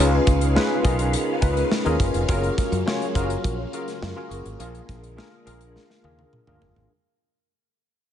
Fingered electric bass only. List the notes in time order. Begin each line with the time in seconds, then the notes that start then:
0.00 C#2
0.27 C#2
0.85 B1
1.42 C#2
1.86 D#2
2.00 F#1
2.14 F1
2.29 F#1
2.72 F#2
3.15 F#1
3.44 A#1
4.02 F#2
4.31 F#1
4.46 G#1
4.60 A#1
4.89 A#1
5.47 A#1
6.04 D#2
6.47 D2
6.62 F#1
6.76 G#1